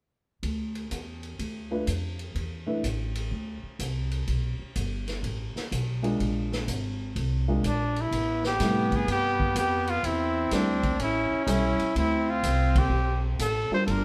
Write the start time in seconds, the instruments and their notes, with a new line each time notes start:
0.43 upright bass D2, kick, ride
0.75 ride
0.91 upright bass E2, kick, hi-hat pedal, ride
1.23 ride
1.39 upright bass D2, kick, ride
1.71 grand piano A3 D4 F4 B4
1.87 upright bass F2, kick, hi-hat pedal, ride
2.19 ride
2.35 upright bass E2, kick, ride
2.66 grand piano A3 D4 E4 B4
2.84 upright bass A1, kick, hi-hat pedal, ride
3.15 ride
3.31 upright bass D2, kick
3.63 muted upright bass stroke
3.79 upright bass C2, kick, hi-hat pedal, ride
4.11 ride
4.27 upright bass B1, kick, ride
4.59 muted upright bass stroke
4.76 upright bass G1, kick, hi-hat pedal, ride
5.08 snare, ride
5.23 upright bass A1, kick, ride
5.55 muted upright bass stroke, snare
5.72 upright bass B1, kick, hi-hat pedal, ride
6.02 grand piano G#3 D4 F4 A#4, ride
6.20 upright bass A#1, kick, ride
6.52 snare
6.68 upright bass G#1, kick, hi-hat pedal, ride
7.16 upright bass C2, kick, ride
7.48 grand piano G#3 D4 F4 A#4
7.64 upright bass A#1, trumpet D4, kick, hi-hat pedal, ride
7.96 ride
8.01 trumpet E4
8.11 upright bass A1, trumpet B3, kick, ride
8.44 trumpet G4, snare
8.60 upright bass A2, grand piano C3 G3 E4 A4, kick, snare, hi-hat pedal, ride
8.92 kick, ride
8.96 trumpet G#4
9.07 upright bass G2, trumpet G4, kick, ride
9.40 kick
9.55 upright bass F2, trumpet G4, kick, hi-hat pedal, ride
9.87 trumpet F4, ride
10.03 upright bass E2, trumpet C4 E4, kick, ride
10.51 upright bass D2, grand piano G3 D4 E4 A#4, trumpet D4, kick, snare, hi-hat pedal, ride
10.83 kick, ride
10.99 upright bass A1, trumpet C#4 E4, kick, ride
11.31 muted upright bass stroke
11.46 upright bass B1, grand piano G3 C#4 E4 A4, trumpet D#4, kick, hi-hat pedal, ride
11.51 trumpet E4
11.79 muted upright bass stroke, ride
11.95 upright bass D2, trumpet C4 E4, kick, ride
12.30 trumpet F4
12.43 upright bass C2, kick, hi-hat pedal, ride
12.75 trumpet G4, kick, ride
12.90 upright bass B1
13.39 upright bass A1, trumpet A4, kick, hi-hat pedal, ride
13.70 grand piano G3 D4 F4 A#4, muted upright bass stroke
13.74 trumpet C5
13.86 upright bass G1, trumpet D4 A4, kick, ride
13.91 trumpet A#4